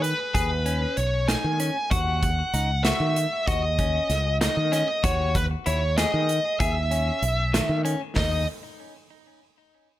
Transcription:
Already playing: fretless electric bass D#3
0.02 lead electric guitar B4, closed hi-hat
0.34 fretless electric bass D#2, clean electric guitar G#4, kick, closed hi-hat
0.66 clean electric guitar C#4, closed hi-hat
0.97 fretless electric bass B1, lead electric guitar C#5, closed hi-hat
1.28 clean electric guitar D#4, lead electric guitar G#5, snare, closed hi-hat
1.44 fretless electric bass D#3
1.60 clean electric guitar C#4, closed hi-hat
1.91 fretless electric bass D#2, clean electric guitar F#4, lead electric guitar F#5, kick, closed hi-hat
2.23 kick, closed hi-hat
2.54 fretless electric bass C#2, clean electric guitar D#4, closed hi-hat
2.84 clean electric guitar F#4, lead electric guitar E5, snare, closed hi-hat
3.00 fretless electric bass D#3
3.16 closed hi-hat
3.47 fretless electric bass D#2, clean electric guitar F#4, lead electric guitar D#5, kick, closed hi-hat
3.79 clean electric guitar C#4, kick, closed hi-hat
4.09 fretless electric bass C#2, snare, closed hi-hat
4.41 clean electric guitar D#4, lead electric guitar D#5, snare, closed hi-hat
4.57 fretless electric bass D#3
4.72 clean electric guitar C#4, lead electric guitar D#5, snare, closed hi-hat
5.04 fretless electric bass D#2, clean electric guitar F#4, lead electric guitar C#5, kick, closed hi-hat
5.35 lead electric guitar B4, kick, closed hi-hat
5.66 fretless electric bass D#2, clean electric guitar E4, lead electric guitar C#5, closed hi-hat
5.98 clean electric guitar G#4, lead electric guitar D#5, snare, closed hi-hat
6.14 fretless electric bass D#3
6.29 closed hi-hat
6.60 fretless electric bass D#2, clean electric guitar G#4, lead electric guitar E5, kick, closed hi-hat
6.91 clean electric guitar C#4, closed hi-hat
7.22 fretless electric bass B1, closed hi-hat
7.53 clean electric guitar D#3, snare, closed hi-hat
7.69 fretless electric bass D#3
7.85 clean electric guitar C#4, closed hi-hat
8.16 fretless electric bass D#2, clean electric guitar D#4, lead electric guitar D#5, kick, snare, open hi-hat

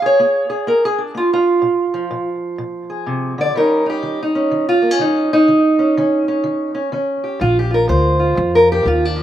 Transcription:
Already playing: steel-string acoustic guitar A#3
0.02 steel-string acoustic guitar G#4 C#5
0.20 steel-string acoustic guitar A#3 G#4
0.50 steel-string acoustic guitar G#4
0.67 steel-string acoustic guitar A#3 A#4
0.85 steel-string acoustic guitar G#4
0.98 steel-string acoustic guitar D4
1.15 steel-string acoustic guitar A#3 F4
1.33 steel-string acoustic guitar F4
1.62 steel-string acoustic guitar A#2
1.94 steel-string acoustic guitar F3
2.11 steel-string acoustic guitar A#2
2.58 steel-string acoustic guitar A#2
2.90 steel-string acoustic guitar G#4
3.06 steel-string acoustic guitar C3
3.38 steel-string acoustic guitar D3 D5
3.55 steel-string acoustic guitar D#3 G3 C#4 D#4 A#4
3.86 steel-string acoustic guitar D#4 G4
4.03 steel-string acoustic guitar D#3
4.23 steel-string acoustic guitar D#4
4.35 steel-string acoustic guitar C#4
4.51 steel-string acoustic guitar D#3
4.69 steel-string acoustic guitar F4
4.82 steel-string acoustic guitar A#3
4.91 steel-string acoustic guitar C#4
4.99 steel-string acoustic guitar D#3 D#4
5.33 steel-string acoustic guitar D#4
5.48 steel-string acoustic guitar D#3
5.79 steel-string acoustic guitar C#4
5.97 steel-string acoustic guitar D#3 C#4
6.28 steel-string acoustic guitar C#4
6.44 steel-string acoustic guitar D#3
6.75 steel-string acoustic guitar C#4
6.92 steel-string acoustic guitar D#3 C#4
7.24 steel-string acoustic guitar G4
7.40 upright bass A#1, steel-string acoustic guitar A#2 F4
7.59 steel-string acoustic guitar G4
7.71 steel-string acoustic guitar F4 A#4
7.88 upright bass D2, steel-string acoustic guitar A#2 C5
8.20 steel-string acoustic guitar F4
8.35 upright bass F2, steel-string acoustic guitar A#2
8.55 steel-string acoustic guitar A#4
8.72 steel-string acoustic guitar G4
8.83 upright bass D#2, steel-string acoustic guitar A#2
8.88 steel-string acoustic guitar F4
9.05 steel-string acoustic guitar D4
9.16 steel-string acoustic guitar F3

